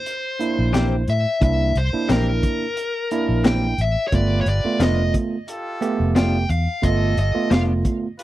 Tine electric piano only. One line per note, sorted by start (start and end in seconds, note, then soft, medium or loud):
0.40 1.02 A#3 medium
0.40 1.02 D4 medium
0.40 1.02 E4 medium
1.41 1.72 A#3 medium
1.41 1.72 D4 medium
1.41 1.72 E4 medium
1.93 2.65 A#3 medium
1.93 2.65 D4 medium
1.93 2.65 E4 medium
3.12 3.73 A#3 medium
3.12 3.73 D4 medium
3.12 3.73 E4 medium
4.12 4.43 A3 medium
4.12 4.43 B3 medium
4.12 4.44 F4 medium
4.64 5.36 A3 medium
4.64 5.36 B3 medium
4.64 5.36 F4 medium
5.81 6.43 A3 medium
5.81 6.43 B3 medium
5.81 6.43 G4 medium
6.82 7.13 A3 medium
6.82 7.14 B3 medium
6.82 7.14 F4 medium
7.35 8.06 A3 medium
7.35 8.06 B3 medium
7.35 8.06 F4 medium